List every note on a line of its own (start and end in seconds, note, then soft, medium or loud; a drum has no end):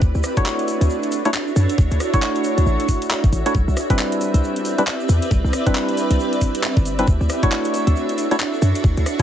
0.00 0.12 D2 loud
0.00 4.37 D4 medium
0.00 3.51 E4 medium
0.00 3.51 F#4 medium
0.00 3.51 A4 medium
0.00 0.66 B4 medium
0.00 3.51 C#5 medium
0.00 9.22 E5 medium
0.00 kick loud
0.00 shaker medium
0.15 0.22 D2 medium
0.15 shaker soft
0.22 3.55 F#4 medium
0.22 cross-stick medium
0.22 open hi-hat loud
0.22 shaker loud
0.36 1.22 A3 medium
0.36 1.22 D4 medium
0.36 1.22 E4 medium
0.36 1.22 F#4 medium
0.36 1.22 C#5 medium
0.36 kick loud
0.36 closed hi-hat medium
0.36 shaker soft
0.46 clap loud
0.46 shaker medium
0.59 closed hi-hat soft
0.59 shaker soft
0.68 open hi-hat medium
0.68 shaker medium
0.72 3.55 C#5 loud
0.81 0.88 D2 medium
0.81 closed hi-hat medium
0.81 shaker soft
0.90 shaker medium
1.03 closed hi-hat soft
1.03 shaker soft
1.12 open hi-hat loud
1.12 shaker loud
1.25 1.30 A3 medium
1.25 1.30 D4 medium
1.25 1.30 E4 medium
1.25 1.30 F#4 medium
1.25 1.30 C#5 medium
1.25 closed hi-hat medium
1.25 shaker soft
1.34 clap loud
1.34 shaker medium
1.47 shaker soft
1.56 1.67 F#2 medium
1.56 open hi-hat medium
1.56 shaker medium
1.69 closed hi-hat medium
1.69 shaker soft
1.78 1.89 D2 loud
1.78 kick loud
1.78 shaker medium
1.91 1.98 D2 medium
1.91 closed hi-hat soft
1.91 shaker soft
2.00 cross-stick medium
2.00 open hi-hat loud
2.00 shaker loud
2.14 3.43 A3 medium
2.14 3.43 D4 medium
2.14 3.43 E4 medium
2.14 3.43 F#4 medium
2.14 3.43 C#5 medium
2.14 kick loud
2.14 closed hi-hat medium
2.14 shaker soft
2.22 clap loud
2.22 shaker medium
2.35 closed hi-hat medium
2.35 shaker soft
2.44 open hi-hat medium
2.44 shaker loud
2.58 2.65 D2 medium
2.58 closed hi-hat medium
2.58 shaker soft
2.66 2.77 A1 medium
2.66 shaker medium
2.80 closed hi-hat medium
2.80 shaker soft
2.88 kick medium
2.88 open hi-hat loud
2.88 shaker loud
3.02 closed hi-hat medium
3.02 shaker soft
3.11 clap loud
3.11 shaker medium
3.24 3.31 A1 medium
3.24 kick loud
3.24 closed hi-hat soft
3.24 shaker soft
3.33 3.43 A1 medium
3.33 open hi-hat medium
3.33 shaker loud
3.46 3.54 A3 medium
3.46 3.54 D4 medium
3.46 3.54 E4 medium
3.46 3.54 F#4 medium
3.46 3.54 C#5 medium
3.46 closed hi-hat medium
3.46 shaker soft
3.55 3.65 C2 loud
3.55 7.08 C4 medium
3.55 9.22 E4 medium
3.55 7.04 G4 medium
3.55 7.04 B4 medium
3.55 7.04 D5 medium
3.55 kick loud
3.55 shaker medium
3.68 3.75 C2 loud
3.68 shaker soft
3.77 7.08 D5 medium
3.77 cross-stick medium
3.77 open hi-hat loud
3.77 shaker loud
3.90 4.75 G3 medium
3.90 4.75 C4 medium
3.90 4.75 D4 medium
3.90 4.75 E4 medium
3.90 4.75 B4 medium
3.90 8.51 B4 medium
3.90 kick loud
3.90 closed hi-hat medium
3.90 shaker soft
3.99 clap loud
3.99 shaker medium
4.12 closed hi-hat medium
4.12 shaker soft
4.21 open hi-hat medium
4.21 shaker loud
4.34 4.41 C2 medium
4.34 closed hi-hat medium
4.34 shaker soft
4.44 shaker medium
4.56 closed hi-hat medium
4.56 shaker soft
4.65 open hi-hat loud
4.65 shaker loud
4.78 4.83 G3 medium
4.78 4.83 C4 medium
4.78 4.83 D4 medium
4.78 4.83 E4 medium
4.78 4.83 B4 medium
4.78 closed hi-hat medium
4.78 shaker soft
4.87 clap loud
4.87 shaker soft
5.00 shaker soft
5.09 5.20 E2 medium
5.09 open hi-hat medium
5.09 shaker medium
5.22 closed hi-hat medium
5.22 shaker soft
5.31 5.42 C2 loud
5.31 kick loud
5.31 shaker soft
5.44 5.51 C2 medium
5.44 shaker soft
5.53 cross-stick medium
5.53 open hi-hat loud
5.53 shaker medium
5.66 6.96 G3 medium
5.66 6.96 C4 medium
5.66 6.96 D4 medium
5.66 6.96 E4 medium
5.66 6.96 B4 medium
5.66 kick loud
5.66 closed hi-hat medium
5.66 shaker soft
5.75 clap loud
5.75 shaker medium
5.89 closed hi-hat medium
5.89 shaker soft
5.97 open hi-hat medium
5.97 shaker medium
6.11 6.18 C2 medium
6.11 closed hi-hat medium
6.11 shaker soft
6.19 shaker soft
6.33 closed hi-hat medium
6.33 shaker soft
6.41 kick medium
6.41 open hi-hat loud
6.41 shaker medium
6.55 closed hi-hat medium
6.55 shaker soft
6.63 clap loud
6.63 shaker soft
6.77 7.05 G1 medium
6.77 kick loud
6.77 shaker soft
6.85 open hi-hat medium
6.85 shaker medium
6.99 7.07 G3 medium
6.99 7.07 C4 medium
6.99 7.07 D4 medium
6.99 7.07 E4 medium
6.99 7.07 B4 medium
6.99 closed hi-hat medium
6.99 shaker soft
7.07 7.18 D2 loud
7.07 9.22 D4 medium
7.07 9.22 F#4 medium
7.07 9.22 A4 medium
7.07 8.82 C#5 medium
7.07 kick loud
7.07 shaker medium
7.21 7.28 D2 loud
7.21 shaker soft
7.29 cross-stick medium
7.29 open hi-hat loud
7.29 shaker medium
7.43 8.28 A3 medium
7.43 8.28 D4 medium
7.43 8.28 E4 medium
7.43 8.28 F#4 medium
7.43 8.28 C#5 medium
7.43 kick loud
7.43 closed hi-hat medium
7.43 shaker soft
7.49 9.22 F#4 loud
7.49 clap loud
7.49 shaker soft
7.64 closed hi-hat medium
7.64 shaker soft
7.74 open hi-hat loud
7.74 shaker medium
7.87 7.94 D2 medium
7.87 closed hi-hat medium
7.87 shaker soft
7.96 shaker medium
8.02 9.22 C#6 medium
8.09 closed hi-hat medium
8.09 shaker soft
8.18 open hi-hat loud
8.18 shaker loud
8.31 8.36 A3 medium
8.31 8.36 D4 medium
8.31 8.36 E4 medium
8.31 8.36 F#4 medium
8.31 8.36 C#5 medium
8.31 closed hi-hat medium
8.31 shaker soft
8.40 clap loud
8.40 shaker medium
8.53 shaker soft
8.62 8.73 F#2 medium
8.62 open hi-hat medium
8.62 shaker medium
8.75 closed hi-hat medium
8.75 shaker soft
8.84 8.95 D2 loud
8.84 9.22 D4 medium
8.84 kick loud
8.84 shaker medium
8.97 9.04 D2 loud
8.97 closed hi-hat soft
8.97 shaker soft
9.06 cross-stick medium
9.06 open hi-hat loud
9.06 shaker loud
9.19 shaker soft